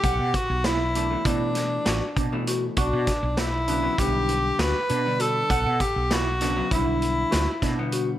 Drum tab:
HH |xxxxxxxxx|xxxxxxxxx|xxxxxxxxx|
SD |--o--oo--|-oo---o--|--oo--oo-|
BD |oo--o--o-|oo--o----|oo--o--o-|